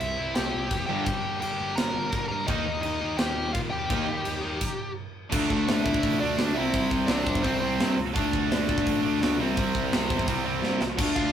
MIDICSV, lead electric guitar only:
0, 0, Header, 1, 2, 480
1, 0, Start_track
1, 0, Tempo, 354191
1, 1446, Time_signature, 4, 2, 24, 8
1, 15341, End_track
2, 0, Start_track
2, 0, Title_t, "Lead electric guitar"
2, 0, Program_c, 0, 29
2, 0, Note_on_c, 0, 76, 89
2, 17, Note_on_c, 0, 64, 63
2, 449, Note_off_c, 0, 76, 0
2, 458, Note_off_c, 0, 64, 0
2, 476, Note_on_c, 0, 79, 96
2, 490, Note_on_c, 0, 67, 79
2, 1156, Note_off_c, 0, 79, 0
2, 1158, Note_off_c, 0, 67, 0
2, 1173, Note_on_c, 0, 79, 90
2, 1214, Note_on_c, 0, 67, 64
2, 1408, Note_off_c, 0, 79, 0
2, 1424, Note_on_c, 0, 79, 105
2, 1433, Note_off_c, 0, 67, 0
2, 1460, Note_on_c, 0, 67, 87
2, 1881, Note_off_c, 0, 79, 0
2, 1900, Note_off_c, 0, 67, 0
2, 1906, Note_on_c, 0, 79, 96
2, 1944, Note_on_c, 0, 67, 71
2, 2362, Note_off_c, 0, 79, 0
2, 2380, Note_on_c, 0, 82, 97
2, 2382, Note_off_c, 0, 67, 0
2, 2423, Note_on_c, 0, 70, 83
2, 3062, Note_off_c, 0, 82, 0
2, 3086, Note_off_c, 0, 70, 0
2, 3093, Note_on_c, 0, 82, 99
2, 3134, Note_on_c, 0, 70, 78
2, 3332, Note_off_c, 0, 82, 0
2, 3342, Note_on_c, 0, 75, 107
2, 3354, Note_off_c, 0, 70, 0
2, 3371, Note_on_c, 0, 63, 89
2, 3805, Note_off_c, 0, 75, 0
2, 3816, Note_off_c, 0, 63, 0
2, 3821, Note_on_c, 0, 75, 87
2, 3866, Note_on_c, 0, 63, 68
2, 4298, Note_on_c, 0, 79, 98
2, 4304, Note_off_c, 0, 63, 0
2, 4329, Note_off_c, 0, 75, 0
2, 4333, Note_on_c, 0, 67, 78
2, 4777, Note_off_c, 0, 67, 0
2, 4779, Note_off_c, 0, 79, 0
2, 4784, Note_on_c, 0, 77, 95
2, 4812, Note_on_c, 0, 65, 70
2, 4852, Note_off_c, 0, 77, 0
2, 4880, Note_off_c, 0, 65, 0
2, 5017, Note_on_c, 0, 79, 83
2, 5048, Note_on_c, 0, 67, 66
2, 6659, Note_off_c, 0, 79, 0
2, 6674, Note_off_c, 0, 67, 0
2, 7454, Note_on_c, 0, 69, 95
2, 7476, Note_on_c, 0, 57, 76
2, 7909, Note_off_c, 0, 57, 0
2, 7912, Note_on_c, 0, 76, 117
2, 7936, Note_on_c, 0, 64, 88
2, 7945, Note_off_c, 0, 69, 0
2, 8366, Note_off_c, 0, 76, 0
2, 8379, Note_off_c, 0, 64, 0
2, 8398, Note_on_c, 0, 74, 119
2, 8431, Note_on_c, 0, 62, 79
2, 8848, Note_off_c, 0, 74, 0
2, 8866, Note_off_c, 0, 62, 0
2, 8868, Note_on_c, 0, 76, 101
2, 8899, Note_on_c, 0, 64, 86
2, 9323, Note_off_c, 0, 76, 0
2, 9340, Note_off_c, 0, 64, 0
2, 9574, Note_on_c, 0, 74, 97
2, 9614, Note_on_c, 0, 62, 77
2, 10057, Note_off_c, 0, 62, 0
2, 10070, Note_on_c, 0, 72, 98
2, 10085, Note_off_c, 0, 74, 0
2, 10086, Note_on_c, 0, 60, 78
2, 10285, Note_off_c, 0, 72, 0
2, 10301, Note_on_c, 0, 72, 95
2, 10309, Note_off_c, 0, 60, 0
2, 10328, Note_on_c, 0, 60, 76
2, 10759, Note_off_c, 0, 72, 0
2, 10773, Note_off_c, 0, 60, 0
2, 15117, Note_on_c, 0, 77, 88
2, 15133, Note_on_c, 0, 65, 75
2, 15341, Note_off_c, 0, 65, 0
2, 15341, Note_off_c, 0, 77, 0
2, 15341, End_track
0, 0, End_of_file